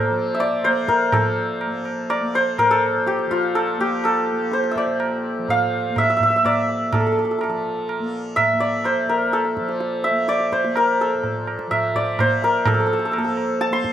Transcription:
Already playing: A#2 A#3 A4 C5 D5
0.10 F3
0.35 E5
0.40 D5, tabla te
0.64 A#3 C5, tabla na
0.88 A#4, tabla ke
1.12 F3 A4, tabla na, tabla ge
1.61 tabla na
1.67 A#3
1.85 tabla na
2.10 D5, tabla na
2.20 A#3
2.34 C5, tabla na
2.58 A#4, tabla na, tabla ge
2.71 A#2 A4
3.06 G4, tabla te
3.19 tabla te
3.26 F3
3.31 F4, tabla ke
3.43 tabla te
3.55 A4, tabla na
3.78 A#3 G4
4.04 A4, tabla na
4.32 A#3
4.52 C5, tabla te
4.64 tabla te
4.71 E5
4.76 D5, tabla ke
4.86 A#2, tabla te
5.00 tabla na
5.38 F3
5.48 F5, tabla tin, tabla ge
5.90 A#3
5.96 E5, tabla na, tabla ge
6.03 E5
6.10 E5
6.17 E5, tabla ge
6.23 E5
6.30 E5
6.36 E5
6.43 A#3 D5, tabla na, tabla ge
6.69 tabla te
6.93 A#2 A4, tabla na, tabla ge
7.00 A4
7.07 A4
7.12 A4
7.19 A4
7.25 A4
7.31 A4
7.38 A4, tabla na
7.43 A4
7.48 F3 A4
7.89 tabla na
8.00 A#3
8.36 E5, tabla na, tabla ge
8.53 A#3
8.60 D5
8.84 C5, tabla na
9.06 A#2 A#4
9.32 A4, tabla te
9.45 tabla te
9.57 F3, tabla ke
9.69 tabla te
9.80 tabla te
10.04 E5, tabla te
10.11 A#3
10.28 D5, tabla te
10.40 tabla te
10.52 C5, tabla ke
10.63 A#3, tabla te
10.76 A#4, tabla na
11.01 A4
11.14 A#2
11.23 tabla tin, tabla ge
11.47 tabla na
11.59 tabla ke
11.67 F3
11.71 E5, tabla na, tabla ge
11.95 D5, tabla ge
12.19 A#3 C5, tabla na, tabla ge
12.42 A#4, tabla te
12.65 F3 A4, tabla na, tabla ge
12.74 A4
12.80 A4
12.86 A4
12.93 A4
12.99 A4
13.05 A4
13.12 A4, tabla na
13.17 A#3 A4
13.25 A4
13.37 tabla na
13.61 A5, tabla te
13.70 A#3 C6, tabla te
13.84 tabla ke

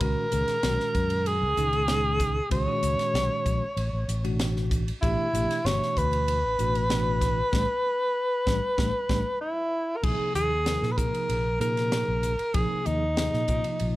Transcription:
0.00 C#2 A#2 D#3 G#3 C#4 F#4 A#4, kick, ride
0.31 C#2 A#2 D#3 G#3 C#4 G#4, hi-hat pedal, ride
0.48 snare, ride
0.63 B1 A#2 D#3 G#3 C#4 F#4, snare, ride
0.80 snare
0.95 F#2, kick, hi-hat pedal, ride
1.10 ride
1.26 G#4, ride
1.42 C#2
1.56 C#2 A#2 D#3 G#3 C#4 D#4, hi-hat pedal, ride
1.73 ride
1.88 A#2 D#3 G#3 C#4 D#4, snare, ride
2.20 kick, snare, hi-hat pedal, ride
2.50 C#2 A#2 D#3 G#3 C#4 F#4 C#5, kick, ride
2.67 A#2 D#3 G#3 C#4 F#4
2.83 C#2, hi-hat pedal, ride
2.99 snare, ride
3.14 B1, snare, ride
3.45 A#1, kick, hi-hat pedal, ride
3.77 A1, ride
3.93 A1
4.08 A1, hi-hat pedal, ride
4.24 B2 E3 A3 D4 F#4, ride
4.39 snare, ride
4.56 snare
4.71 kick, hi-hat pedal, ride
4.88 ride
5.02 A1 B2 E3 A3 D4 E4 G4, kick, ride
5.33 A1 B2 E3 A3 D4 G4, hi-hat pedal, ride
5.51 snare, ride
5.65 G1 B2 E3 A3 D4 F#4 C#5, snare, ride
5.83 snare
5.97 D2 B4, kick, hi-hat pedal, ride
6.13 ride
6.28 ride
6.44 A1
6.58 A1 B2 E3 A3 D4 F#4, hi-hat pedal, ride
6.75 ride
6.90 B2 E3 A3 D4 F#4, snare, ride
7.21 kick, snare, hi-hat pedal, ride
7.52 A1 G3 A3 D4, kick, snare
8.47 A1 G3 A3 D4, kick, snare
8.78 A1 G3 A3 D4, kick, snare
9.09 A1 G3 A3 D4, kick, snare
9.41 E4
9.97 A#4
10.03 A#1 C3 F3 A#3 D#4 G#4, kick, crash
10.20 muted fingered electric bass stroke
10.35 D#2 G#4, hi-hat pedal, ride
10.65 C3 F3 A#3 D#4 A#4, snare, ride
10.82 A#2, snare
10.92 B4
10.96 C3 F3 A#3 D#4 G#4 A#4, kick, hi-hat pedal, ride
11.14 ride
11.29 A#1, ride
11.59 A#2 C3 F3 A#3 D#4 G#4 A#4, hi-hat pedal, ride
11.77 snare, ride
11.92 snare, ride
12.08 A#1
12.23 hi-hat pedal, ride
12.39 ride
12.54 A#1 C3 F3 A#3 D#4 G#4, kick, ride
12.86 D#2 D#4, hi-hat pedal, ride
13.17 C3 F3 A#3 D#4 G#4, snare, ride
13.34 A#2, snare
13.48 C3 F3 A#3 D#4 F4, kick, hi-hat pedal, ride
13.64 ride
13.80 A#1, ride

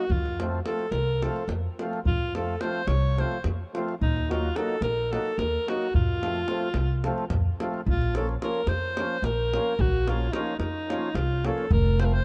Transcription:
Already playing: F#4
0.10 F2 F4, davul low
0.26 davul high
0.40 F3 A3 C4 F4, davul high
0.66 F3 A3 C4 F4 A4, davul high
0.79 davul high
0.91 C2 A#4, davul high
1.22 F3 A3 C4 F4 A4, davul high
1.36 davul high
1.48 F2, davul high
1.79 F3 A3 C4 F4, davul high
1.93 davul high
2.05 F2 F4, davul low
2.35 F3 A3 C4 F4 A4, davul high
2.61 F3 A3 C4 F4 C5, davul high
2.75 davul high
2.87 C2 C#5, davul high
3.18 F3 A3 C4 F4 C5, davul high
3.32 davul high
3.44 F2, davul high
3.74 F3 A3 C4 F4, davul high
3.89 davul high
4.01 D#2 D#4, davul low
4.16 davul high
4.29 F#3 A#3 D#4 F4 F#4, davul high
4.55 F#3 A#3 D#4 F#4 A4, davul high
4.70 davul high
4.81 A#1 A#4, davul high
5.11 F#3 A#3 D#4 F#4 A4, davul high
5.25 davul high
5.38 D#2 A#4, davul high
5.66 F#3 A#3 D#4 F#4, davul high
5.82 davul high
5.94 F2 F4, davul low
6.22 F3 A3 C4 F4, davul high
6.36 davul high
6.48 F3 A3 C4 F4, davul high
6.74 C2, davul high
7.04 F3 A3 C4 F4, davul high
7.18 davul high
7.30 F2, davul high, davul low
7.60 F3 A3 C4 F4, davul high
7.74 davul high
7.86 A#1 F4, davul low
8.01 davul high
8.15 F3 A#3 C#4 F4 A4, davul high
8.29 davul high
8.41 F3 A#3 C#4 F4 A#4, davul high
8.55 davul high
8.66 F2 C5, davul high
8.96 F3 A#3 C#4 F4, davul high
9.22 A#1 A#4, davul high
9.53 F3 A#3 C#4 F4, davul high
9.79 A#1 F#4, davul low
9.94 davul high
10.07 F3 A#3 C#4 F4, davul high
10.21 davul high
10.33 F3 A#3 C#4 D#4 F4, davul high
10.47 davul high
10.59 F2 D#4, davul high
10.89 F3 A#3 C#4 F4, davul high
11.14 C2 F4, davul high
11.45 F3 A#3 C#4 F4 A4, davul high
11.58 davul high
11.71 F1 A#4, davul low
11.86 davul high
11.99 F3 A3 C4 F4 C5, davul high
12.05 A#4
12.11 C5, davul high

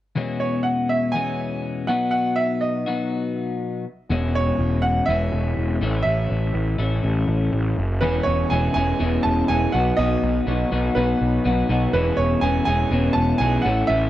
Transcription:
0.16 E2 B2 E3 G#3 C#4 E4
0.40 C#5
0.63 F#5
0.89 E5
1.12 E2 B2 E3 G#3 G#5
1.16 C#4 E4
1.87 B2 F#3 B3 D#4 F#4 F#5
2.11 F#5
2.36 E5
2.61 D#5
2.86 B2 F#3 B3 D#4 F#4
4.10 E1 E2 B2 E3 G#3 C#4 E4
4.35 C#5
4.59 E1
4.82 F#5
5.05 E1 E2 B2 E3 E5
5.10 G#3 C#4 E4
5.33 E1
5.57 E1
5.81 A1 A2 E3 A3 C#4 E4
6.03 A1 E5
6.30 A1
6.54 A1
6.78 A1 A2 E3 A3 C#4 E4
7.03 A1
7.28 A1
7.53 A1
7.78 F#1
8.01 E1 E2 B2 E3 G#3 B3 C#4 E4 G#4 B4
8.23 E1 C#5
8.50 E1 E2 B2 E3 G#3 B3 C#4 E4 G#4 G#5
8.74 E1 E2 B2 E3 G#3 B3 C#4 E4 G#4 G#5
8.99 E1 E2 B2 E3 G#3 B3 C#4 E4 G#4
9.23 E1 A5
9.48 E1 E2 B2 E3 G#3 B3 C#4 E4 G#4 G#5
9.72 B1 B2 F#3 B3 D#4 F#4 F#5
9.97 B1 B2 F#3 B3 D#4 F#4 D#5
10.23 B1
10.46 B1 B2 F#3 B3 D#4 F#4
10.71 B1 B2 F#3 B3 D#4 F#4
10.95 B1 B2 F#3 B3 D#4 F#4 B4
11.21 B1
11.44 B1 B2 F#3 B3 D#4 F#4
11.69 B1 B2 F#3 B3 D#4 F#4
11.93 E1 E2 B2 E3 G#3 B3 C#4 E4 G#4 B4
12.17 E1 C#5
12.41 E1 E2 B2 E3 G#3 B3 C#4 E4 G#4 G#5
12.65 E1 E2 B2 E3 G#3 B3 C#4 E4 G#4 G#5
12.91 E1 E2 B2 E3 G#3 B3 C#4 E4 G#4
13.13 E1 A5
13.38 B1 E2 B2 E3 G#3 C#4 E4 G#5
13.42 B3 G#4
13.62 A2 E3 A3 C#4 F#5
13.66 A1 E4 A4
13.87 A1 A2 E3 A3 C#4 E4 E5
13.92 A4

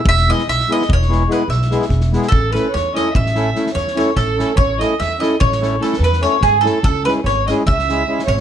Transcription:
0.05 E1 E5, kick
0.17 snare
0.27 G#3 B3 E4 G#4 D#5, snare
0.38 snare
0.48 B1 E5, snare
0.60 snare
0.69 G#3 B3 E4 G#4 D#5, snare
0.82 snare
0.89 E1, kick
0.93 C#5
1.02 snare
1.08 G#3 B3 E4 G#4, snare
1.27 G#3 B3 E4 G#4, snare
1.32 B4
1.48 B1 E5, snare
1.62 snare
1.70 G#3 B3 E4 G#4, snare
1.82 snare
1.89 E1, kick, snare
2.01 snare
2.12 G#3 B3 E4 G#4, snare
2.22 snare
2.28 A1 A4, kick
2.52 A3 C#4 E4 A4 B4, snare
2.70 C#5
2.74 E2, snare
2.94 A3 C#4 E4 A4 D#5, snare
3.13 A1 E5, kick
3.26 snare
3.35 A3 C#4 E4 A4, snare
3.55 A3 C#4 E4 A4, snare
3.67 snare
3.74 E2 C#5, snare
3.88 snare
3.95 A3 C#4 E4 A4 C#5, snare
4.16 A1 A4, kick, snare
4.38 A3 C#4 E4 A4, snare
4.56 A1 C#5, kick
4.79 A3 C#4 E4 A4 D#5, snare
5.00 E2 E5, snare
5.20 A3 C#4 E4 A4 D#5, snare
5.40 A1 C#5, kick
5.52 snare
5.59 A3 C#4 E4 A4, snare
5.80 A3 C#4 E4 A4, snare
5.93 snare
5.99 E2 B4, snare
6.04 B4
6.13 snare
6.21 A3 C#4 E4 A4 C#5, snare
6.41 G#2 G#4, kick, snare
6.61 A3 C#4 E4 A4
6.65 A4, snare
6.82 C#2 A4, kick
7.05 G#3 C#4 E4 G#4 B4, snare
7.23 G#1 C#5
7.28 snare
7.47 G#3 C#4 E4 G#4 D#5, snare
7.66 C#2 E5, kick
7.79 snare
7.89 G#3 C#4 E4 G#4, snare
8.07 G#3 C#4 E4 G#4
8.19 snare
8.26 G#1 C#5, snare

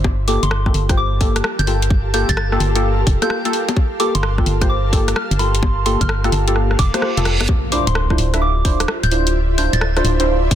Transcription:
Already playing: G1 F4 G4 A#4 D5 C6
0.04 kick, high bongo
0.22 A5
0.28 A#3 F4 G4 A4 D6, open hi-hat
0.43 G1 F5 C6, closed hi-hat
0.51 cross-stick
0.66 A#3 F4 G4 A4, kick, cross-stick
0.74 G1, open hi-hat
0.89 A#3 F4 G4 C5, kick, cross-stick, closed hi-hat
0.97 D6
1.21 A#3 F4 G4 A4, kick, open hi-hat
1.36 cross-stick, closed hi-hat
1.44 cross-stick
1.59 G1 G6, closed hi-hat
1.67 A#3 F4 G4 A4, open hi-hat
1.82 closed hi-hat
1.90 kick
2.14 A#3 F4 G4 A4 G6, open hi-hat
2.29 G1 A6, kick, closed hi-hat
2.37 A6, cross-stick
2.52 A#3 F4 G4 A4, cross-stick
2.60 G1, open hi-hat
2.75 A#3 F4 G4 A4, closed hi-hat
3.07 F1, kick, open hi-hat
3.22 A#3 F4 G4 A4 G6, cross-stick, closed hi-hat, high bongo
3.30 cross-stick
3.45 A#3 F4 G4 A4, closed hi-hat
3.53 open hi-hat
3.69 closed hi-hat, high bongo
3.77 A5, kick, high bongo
4.00 A#3 F4 G4 A4 D6, open hi-hat
4.15 G1 C6, closed hi-hat
4.23 C6, cross-stick
4.38 A#3 F4 G4 A4, kick, cross-stick
4.46 G1, open hi-hat
4.61 A#3 F4 G4 C5, kick, cross-stick, closed hi-hat
4.69 D6
4.93 A#3 F4 G4 A4, kick, open hi-hat
5.08 cross-stick, closed hi-hat
5.16 F6, cross-stick
5.31 G1, closed hi-hat
5.39 A#3 F4 G4 A4 C6, open hi-hat
5.55 closed hi-hat
5.63 kick, high bongo
5.86 A#3 F4 G4 A4 C6, open hi-hat
6.01 G1 F6, kick, closed hi-hat
6.09 F6, cross-stick
6.24 A#3 F4 G4 A4, cross-stick, closed hi-hat
6.32 G1, open hi-hat
6.47 A#3 F4 G4 A4, closed hi-hat
6.56 cross-stick, reverse cymbal
6.71 cross-stick
6.79 F1 D6, kick, open hi-hat
6.94 A#3 F4 G4 C5, cross-stick, closed hi-hat, high bongo
7.02 cross-stick
7.17 F1 A#3 F4 G4 A4, closed hi-hat
7.25 cross-stick, open hi-hat
7.41 G1, cross-stick, closed hi-hat, high bongo
7.49 F4, kick, high bongo, impact
7.66 E5
7.72 D4 E4 F4 C5 D6, open hi-hat
7.87 D1 C6, closed hi-hat
7.93 D5 C6, cross-stick
8.10 D4 E4 F4 C5, kick, cross-stick
8.18 D1 C6, open hi-hat
8.34 D4 E4 F4 E5, cross-stick, closed hi-hat
8.42 D6
8.65 D4 E4 F4 C5, kick, open hi-hat
8.80 cross-stick, closed hi-hat
8.88 cross-stick
9.03 D1 G6, closed hi-hat
9.11 D4 E4 F4 C5, open hi-hat
9.27 closed hi-hat
9.58 D4 E4 F4 C5 G6, open hi-hat
9.73 D1 A6, closed hi-hat
9.81 A6, cross-stick
9.97 D4 E4 F4 C5, cross-stick, closed hi-hat
10.04 D1, open hi-hat
10.20 D4 E4 F4 C5, closed hi-hat
10.51 C2, kick, open hi-hat

